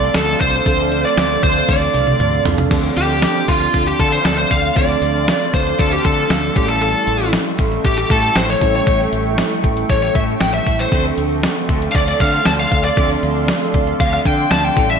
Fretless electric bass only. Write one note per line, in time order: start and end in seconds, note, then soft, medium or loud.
0.15 0.34 D2 loud
0.41 0.59 C2 medium
0.66 1.03 D2 medium
1.17 1.36 D2 loud
1.43 1.62 D2 loud
1.69 1.87 D2 loud
1.94 2.13 C2 medium
2.20 2.38 D2 loud
2.45 2.64 C2 medium
2.71 2.90 D2 medium
2.97 3.25 D2 medium
3.48 3.67 D2 loud
3.74 3.93 D2 medium
3.99 4.18 D3 medium
4.25 4.44 D2 medium
4.51 4.69 D2 loud
4.76 4.95 D2 loud
5.02 5.29 D2 loud
5.54 5.72 D2 loud
5.79 5.98 D2 medium
6.05 6.23 D3 medium
6.30 6.49 D2 loud
6.56 6.93 A1 loud
7.07 7.35 A1 loud
7.59 7.77 A1 loud
7.85 8.03 A1 medium
8.10 8.29 A2 medium
8.36 8.54 A1 medium
8.61 8.80 A1 medium
8.87 9.05 A1 loud
9.12 9.40 A1 medium
9.64 9.82 A1 medium
9.90 10.08 A1 loud
10.15 10.34 A2 medium
10.41 10.59 A1 medium
10.67 10.85 A1 medium
10.92 11.11 D2 medium
11.18 11.45 D2 medium
11.69 11.87 D2 loud
11.95 12.13 D2 medium
12.20 12.39 D3 medium
12.46 12.65 D2 medium
12.72 12.90 D2 medium
12.97 13.16 D2 loud
13.23 13.51 D2 loud
13.74 13.93 D2 loud
14.00 14.18 D2 loud
14.26 14.44 D3 loud
14.51 14.69 D2 loud
14.77 14.99 A1 loud